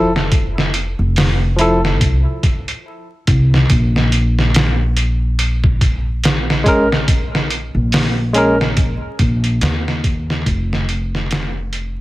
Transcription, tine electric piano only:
0.00 0.11 E4 medium
0.00 0.12 A4 medium
1.56 1.79 F3 medium
1.56 1.80 E4 medium
1.61 1.81 A4 loud
6.64 6.86 G#3 medium
6.64 6.87 C#4 medium
6.68 6.88 A#4 loud
8.33 8.55 G#3 medium
8.33 8.56 C#4 medium
8.37 8.57 A#4 medium

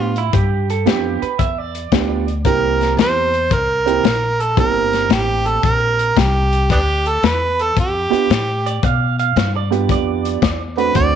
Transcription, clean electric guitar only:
0.18 0.34 E4 medium
0.34 0.68 G4 medium
0.70 0.86 A4 medium
0.87 1.21 G4 medium
1.22 1.39 B4 medium
1.39 1.58 E5 medium
1.58 2.35 D5 medium
8.66 8.84 D5 medium
8.84 9.18 F5 medium
9.20 9.53 F5 medium
9.56 9.89 D5 medium
9.92 10.59 D5 medium

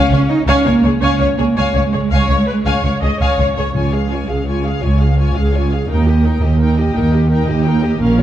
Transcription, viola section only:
0.00 0.11 C#5 medium
0.13 0.20 C#5 soft
0.48 0.64 C#5 medium
0.66 0.73 C#5 soft
0.84 0.91 C#5 soft
1.02 1.19 C#5 medium
1.20 1.27 C#5 soft
1.39 1.46 C#5 soft
1.57 1.73 C#5 medium
1.75 1.82 C#5 soft
1.93 2.00 C#5 soft
2.12 2.46 C#5 medium
2.48 2.55 B4 medium
2.66 3.02 C#5 medium
3.02 3.20 D#5 medium
3.21 3.55 C#5 medium
3.57 3.75 C#5 soft
3.75 3.92 F4 soft
3.93 4.11 G#4 soft
4.11 4.29 F4 soft
4.29 4.47 G#4 soft
4.47 4.64 F4 soft
4.64 4.82 G#4 soft
4.83 5.01 F4 soft
5.01 5.18 G#4 soft
5.18 5.35 F4 soft
5.37 5.54 G#4 soft
5.55 5.72 F4 soft
5.72 5.90 G#4 soft
5.89 6.06 D#4 soft
6.08 6.25 G4 soft
6.25 6.43 D#4 soft
6.43 6.60 G4 soft
6.61 6.77 D#4 soft
6.79 6.96 G4 soft
6.97 7.14 D#4 soft
7.14 7.32 G4 soft
7.32 7.48 D#4 soft
7.50 7.67 G4 soft
7.67 7.84 D#4 soft
7.84 8.02 G4 soft
8.01 8.18 C#4 soft
8.19 8.23 F4 soft

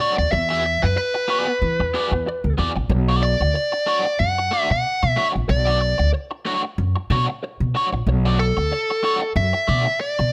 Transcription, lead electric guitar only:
0.00 0.15 D5 loud
0.18 0.31 D5 medium
0.32 0.84 E5 loud
0.82 0.96 B4 medium
0.97 2.54 B4 medium
3.23 4.22 D5 medium
4.19 4.70 F#5 loud
4.71 5.18 F#5 medium
5.17 5.26 E5 medium
5.50 6.10 D5 medium
8.39 9.32 A4 medium
9.36 10.00 E5 loud
10.01 10.32 D5 loud

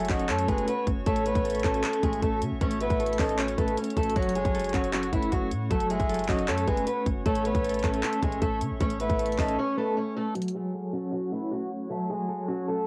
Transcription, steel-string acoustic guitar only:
0.09 0.26 F#3 medium
0.09 0.26 F#4 medium
0.29 0.46 A3 medium
0.29 0.46 A4 medium
0.48 0.65 G#3 medium
0.48 0.65 G#4 medium
0.67 0.85 B3 medium
0.67 0.84 B4 medium
1.06 1.23 A3 medium
1.06 1.23 A4 medium
1.26 1.62 B3 medium
1.26 1.62 B4 medium
1.64 1.81 A3 medium
1.64 1.81 A4 medium
1.84 2.01 A3 medium
1.84 2.00 A4 medium
2.04 2.21 G#3 medium
2.04 2.20 G#4 medium
2.22 2.39 A3 medium
2.22 2.39 A4 medium
2.61 2.78 C#4 medium
2.61 2.78 C#5 loud
2.81 3.18 B3 medium
2.81 3.17 B4 medium
3.20 3.37 A3 medium
3.20 3.36 A4 medium
3.39 3.56 C#4 medium
3.39 3.56 C#5 loud
3.59 3.75 A3 medium
3.59 3.75 A4 medium
3.77 3.94 C#4 medium
3.77 3.94 C#5 medium
3.97 4.14 A3 medium
3.97 4.14 A4 medium
4.16 4.33 F#3 medium
4.16 4.32 F#4 loud
4.35 4.72 G#3 medium
4.35 4.72 G#4 medium
4.74 4.91 F#3 medium
4.74 4.90 F#4 medium
4.92 5.10 F#3 medium
4.92 5.09 F#4 medium
5.13 5.30 E3 medium
5.13 5.30 E4 medium
5.32 5.49 F#3 medium
5.32 5.49 F#4 loud
5.70 5.88 A3 medium
5.70 5.87 A4 medium
5.90 6.27 G#3 medium
5.90 6.27 G#4 medium
6.29 6.46 F#3 medium
6.29 6.45 F#4 medium
6.48 6.65 A3 medium
6.48 6.65 A4 medium
6.68 6.85 G#3 medium
6.68 6.84 G#4 medium
6.87 7.04 B3 medium
6.87 7.03 B4 medium
7.26 7.43 A3 medium
7.26 7.42 A4 medium
7.45 7.82 B3 medium
7.45 7.81 B4 medium
7.83 8.01 A3 medium
7.83 8.00 A4 medium
8.03 8.20 A3 medium
8.03 8.20 A4 medium
8.23 8.40 G#3 medium
8.23 8.39 G#4 medium
8.42 8.59 A3 medium
8.42 8.58 A4 medium
8.81 8.98 C#4 medium
8.81 8.97 C#5 loud
9.00 9.37 B3 medium
9.00 9.36 B4 medium
9.39 9.56 A3 medium
9.39 9.56 A4 medium
9.59 9.75 C#4 medium
9.59 9.75 C#5 loud
9.78 9.95 A3 medium
9.78 9.94 A4 medium
9.97 10.14 C#4 medium
9.97 10.13 C#5 medium
10.17 10.33 A3 medium
10.17 10.33 A4 medium
10.35 10.52 F#3 medium
10.35 10.52 F#4 loud
10.55 10.92 G#3 medium
10.55 10.91 G#4 medium
10.93 11.10 F#3 medium
10.93 11.10 F#4 medium
11.12 11.29 F#3 medium
11.12 11.29 F#4 medium
11.32 11.49 E3 medium
11.32 11.49 E4 medium
11.52 11.69 F#3 medium
11.52 11.68 F#4 medium
11.90 12.07 A3 medium
11.90 12.07 A4 medium
12.10 12.47 G#3 medium
12.10 12.46 G#4 medium
12.48 12.65 F#3 medium
12.48 12.65 F#4 medium
12.68 12.85 A3 medium
12.68 12.84 A4 medium

